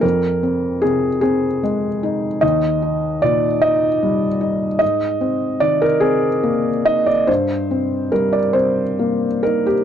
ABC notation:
X:1
M:6/8
L:1/16
Q:3/8=50
K:Eb
V:1 name="Felt piano"
B4 A2 A2 z4 | e4 d2 e6 | e4 d B A4 e d | c4 B d c4 B G |]
V:2 name="Felt piano"
F,,2 C2 C,2 C2 A,2 E2 | E,,2 E2 B,,2 E2 G,2 E2 | A,,2 C2 E,2 C2 B,2 E2 | G,,2 C2 G,2 C2 B,2 E2 |]